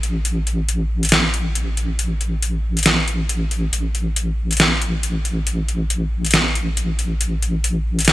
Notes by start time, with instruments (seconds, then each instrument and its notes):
Already playing: wobble bass A1
0.03 closed hi-hat
0.25 closed hi-hat
0.47 closed hi-hat
0.69 closed hi-hat
1.03 closed hi-hat
1.05 closed hi-hat
1.09 snare, closed hi-hat
1.12 closed hi-hat
1.34 closed hi-hat
1.55 closed hi-hat
1.77 closed hi-hat
1.99 closed hi-hat
2.21 closed hi-hat
2.42 closed hi-hat
2.77 closed hi-hat
2.79 closed hi-hat
2.83 snare, closed hi-hat
2.86 closed hi-hat
3.08 closed hi-hat
3.29 closed hi-hat
3.51 closed hi-hat
3.73 wobble bass A1, closed hi-hat
3.95 closed hi-hat
4.16 closed hi-hat
4.51 closed hi-hat
4.53 closed hi-hat
4.57 snare, closed hi-hat
4.60 closed hi-hat
4.82 closed hi-hat
5.03 closed hi-hat
5.25 closed hi-hat
5.47 closed hi-hat
5.68 closed hi-hat
5.90 closed hi-hat
6.25 closed hi-hat
6.26 closed hi-hat
6.31 snare, closed hi-hat
6.34 closed hi-hat
6.55 closed hi-hat
6.77 closed hi-hat
6.99 closed hi-hat
7.21 closed hi-hat
7.42 closed hi-hat
7.64 closed hi-hat
7.99 closed hi-hat
8.00 closed hi-hat
8.05 snare, closed hi-hat
8.08 closed hi-hat